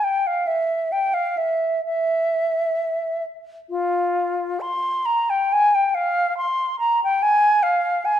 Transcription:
flute
0.03 G5
0.27 F5
0.47 E5
0.92 G5
1.14 F5
1.37 E5
1.85 E5
3.70 F4
4.60 C6
5.05 A#5
5.30 G5
5.53 G#5
5.74 G5
5.94 F5
6.37 C6
6.79 A#5
7.04 G5
7.22 G#5
7.63 F5
8.05 G#5

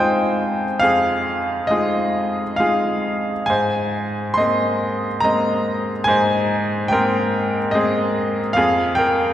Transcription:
grand piano
Already playing: F2 G#3 D#4 F4 G#4 C5 F5 G5 G#5
0.79 F2 G#4 F5
1.67 G#3 D#4 F4 G#4 D#5
2.56 G#3 D#4 F4 G#4 F5
3.46 G#2 C5 G#5
4.34 G#3 D#5 C6
4.38 A#3 C4
5.20 G#3 A#3 C4 A#5
5.24 D#5
6.04 G#2 G#5
6.08 C5
6.88 G#3 A#3 C4 G5
6.93 A#4
7.71 G#3 A#3 C4 G#4 D#5
8.53 F2 F5
8.57 G#4
8.95 A#4 G5

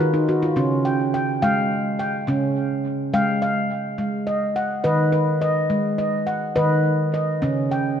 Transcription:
handpan
Already playing: D#3 F#4 B4
0.00 F4
0.14 D#4
0.29 F#4
0.42 F4
0.56 C#3 C#4
0.85 G5
1.14 G5
1.42 G#3 F5 G5
1.99 G5
2.27 C#3 C#4
3.14 G#3 F5 G5
3.42 F5
3.98 G#3
4.27 D#5
4.56 F#5
4.84 D#3 B4 D#5
5.12 B4
5.42 D#5
5.70 G#3
5.98 D#5
6.27 F#5
6.56 D#3 B4 D#5
7.14 D#5
7.42 C#3 C#4
7.71 G5

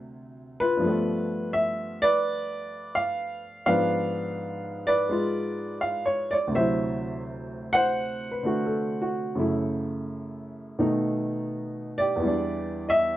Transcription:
upright piano
Already playing: D2 C3 F#3 E5
0.60 F4 B4
0.77 G2 F3
0.84 A3 B3
1.53 E5
2.02 B4 D5
2.95 F5
3.66 G#2 F3 B3 D4 B4 F5
4.87 B4 D5
5.09 G#3 F4
5.81 F5
6.06 C#5
6.31 C#5 D5
6.47 D2
6.52 C3 F#3 C5 E5
6.58 E4
7.73 C5 F#5
8.31 B4
8.43 D3 A3 F#4
8.66 A4
9.02 F#4
9.35 F#2 C#3 A3
9.40 E4
10.79 B2 D#3 A3 D#4
11.98 G4 D5
12.16 E2 E3
12.24 G3 D4
12.89 D#5 E5

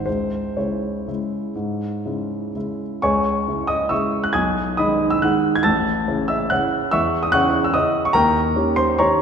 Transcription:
grand piano
0.06 C#2 C5
0.57 C#3 G#3 E4 C#5
1.08 C#3 G#3 E4
1.55 G#2
2.06 C#3 G#3 E4
2.55 C#3 G#3 E4
3.02 C#2 C#5 G#5 C#6
3.48 C#3 G#3 E4
3.67 D#5 D#6
3.89 C#3 G#3 E4 E5 C#6 E6
4.24 F#6
4.33 B1 G#5 D#6 G#6
4.77 D#3 G#3 D#4 D#5 B5 D#6
5.10 E6
5.22 D#3 G#3 D#4 F#5 F#6
5.56 G#6
5.63 A1 A5 E6 A6
6.08 C#3 C#4 E4
6.28 E5 E6
6.50 C#3 C#4 E4 F#5 F#6
6.91 E2 E5 C#6 E6
7.23 D#6
7.32 C#3 C#4 E4 F#5 C#6 F#6
7.64 E6
7.74 C#3 C#4 E4 D#5 D#6
8.05 C#6
8.13 D#2 A#4 G5 A#5
8.56 D#3 C#4 G4
8.76 C5 C6
8.98 D#3 C#4 G4 C#5 A#5 C#6

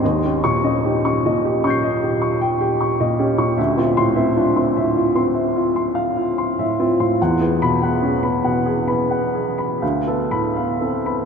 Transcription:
grand piano
0.04 D#2 D#5
0.25 C#4 G4
0.44 A#2 C#6
0.64 C#4 D#5
0.85 D#4 G4
1.04 C#4 C#6
1.26 A#2 D#5
1.45 G4
1.64 C#4 C#6 G6
1.70 C7
1.83 D#5
2.03 G4
2.22 C#6
2.41 G5
2.61 G4
2.81 C#6
3.00 A#2 D#5
3.19 C#4 G4
3.38 A#2 C#6
3.57 D2 E5
3.77 C4 F4
3.97 A2 C6
4.16 C4 E5
4.36 D4 F4
4.56 C4 C6
4.77 A2 E5
4.96 F4
5.15 C4 C6
5.35 E5
5.56 F4
5.76 C6
5.95 F5
6.17 F4
6.38 C6
6.59 A2 E5
6.79 C4 F4
7.00 A2 C6
7.22 E2 F#5
7.41 B3 G#4
7.62 B2 B5
7.82 B3 F#5
8.03 C#4 G#4
8.23 B3 B5
8.44 B2 F#5
8.66 G#4
8.87 B3 B5
9.11 F#5
9.35 G#4
9.58 B5
9.82 D2 F5
10.07 B3 A4
10.31 A2 B5
10.56 B3 F5
10.81 C4 A4
11.06 B3 B5

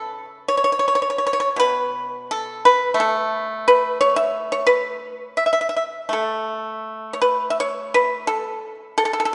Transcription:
pipa
Already playing: C#3 A4
0.48 C#5
0.57 C#5
0.64 C#5
0.72 C#5
0.79 C#5
0.88 C#5
0.95 C#5
1.02 C#5
1.10 C#5
1.18 C#5
1.27 C#5
1.33 C#5
1.40 C#5
1.56 B2 B4
2.31 A4
2.65 B4
2.94 A3
3.00 A4
3.68 B4
4.01 C#5
4.16 E5
4.52 C#5
4.67 B4
5.37 E5
5.46 E5
5.53 E5
5.61 E5
5.69 E5
5.76 E5
6.09 A3 A4
7.13 C#5
7.22 B4
7.50 E5
7.60 C#5
7.94 B4
8.27 A4
8.98 A4
9.05 A4
9.13 A4
9.20 A4
9.25 A4

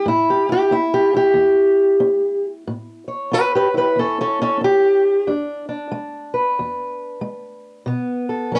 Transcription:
steel-string acoustic guitar
Already playing: E4
0.06 A2 E4
0.30 G4
0.49 E4 G4
0.71 C#4 E4
0.94 G4
1.14 E4 G4
1.34 E2
2.00 C#4
2.68 A2
3.08 C#5
3.32 C#4 G4 B4
3.55 G4 B4
3.74 E4 G4 B4
3.96 E2 C#4 A4
4.21 C#4 A4
4.41 C#4 A4
4.61 C#4 G4
5.27 E2 D4
5.69 D4
5.91 G#3
6.34 B4
6.59 E2
7.21 G#3
7.86 B2 B3
8.29 A4
8.52 F#3 D#4 B4

